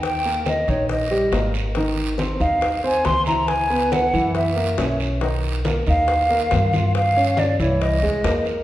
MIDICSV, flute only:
0, 0, Header, 1, 2, 480
1, 0, Start_track
1, 0, Tempo, 431965
1, 43, Time_signature, 4, 2, 24, 8
1, 9596, End_track
2, 0, Start_track
2, 0, Title_t, "Flute"
2, 0, Program_c, 0, 73
2, 53, Note_on_c, 0, 79, 94
2, 495, Note_off_c, 0, 79, 0
2, 536, Note_on_c, 0, 75, 72
2, 777, Note_on_c, 0, 73, 68
2, 794, Note_off_c, 0, 75, 0
2, 998, Note_off_c, 0, 73, 0
2, 1005, Note_on_c, 0, 75, 73
2, 1679, Note_off_c, 0, 75, 0
2, 2676, Note_on_c, 0, 77, 79
2, 3125, Note_off_c, 0, 77, 0
2, 3176, Note_on_c, 0, 80, 94
2, 3395, Note_on_c, 0, 84, 107
2, 3412, Note_off_c, 0, 80, 0
2, 3622, Note_off_c, 0, 84, 0
2, 3629, Note_on_c, 0, 82, 94
2, 3868, Note_on_c, 0, 80, 92
2, 3885, Note_off_c, 0, 82, 0
2, 4358, Note_on_c, 0, 78, 87
2, 4374, Note_off_c, 0, 80, 0
2, 4839, Note_off_c, 0, 78, 0
2, 4847, Note_on_c, 0, 76, 69
2, 5519, Note_off_c, 0, 76, 0
2, 6552, Note_on_c, 0, 77, 89
2, 7692, Note_off_c, 0, 77, 0
2, 7751, Note_on_c, 0, 77, 102
2, 8211, Note_on_c, 0, 74, 86
2, 8227, Note_off_c, 0, 77, 0
2, 8446, Note_off_c, 0, 74, 0
2, 8451, Note_on_c, 0, 73, 71
2, 8689, Note_on_c, 0, 75, 75
2, 8706, Note_off_c, 0, 73, 0
2, 9406, Note_off_c, 0, 75, 0
2, 9596, End_track
0, 0, End_of_file